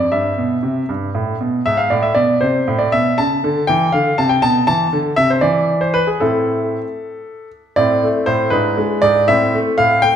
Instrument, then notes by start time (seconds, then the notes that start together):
grand piano
Already playing: D5
0.12 G2 E5
0.38 B2
0.63 C3
0.89 G2
1.15 A2
1.41 B2
1.66 G#2 E5
1.77 F5
1.90 A2 D5
2.03 E5
2.15 B2 D5
2.41 C3 C5
2.68 A2
2.79 D5
2.92 B2 E5
3.18 C#3 A5
3.44 D3
3.67 E3 G5
3.92 D3 F5
4.18 C3 A5
4.29 G5
4.42 B2 A5
4.67 E3 A5
4.93 D3
5.16 C3 E5
5.30 C5
5.41 E3 D5
5.81 C5
5.94 B4
6.07 G#4
6.20 A2 C4 E4 A4
7.76 A2 C4 E4 D5
8.04 A3
8.26 A2 C5
8.50 G#2 D4 E4 B4
8.77 G#3
9.02 G#2 D5
9.28 A2 C4 E4 E5
9.54 A3
9.78 A2 F5
10.02 A3 G5